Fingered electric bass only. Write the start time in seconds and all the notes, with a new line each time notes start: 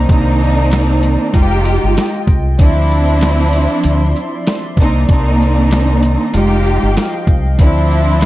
0.09 C2
1.34 F1
1.83 G1
2.28 C2
2.59 D2
3.85 D2
4.78 C2
5.09 C2
6.34 F1
6.83 G1
7.27 C2
7.59 D2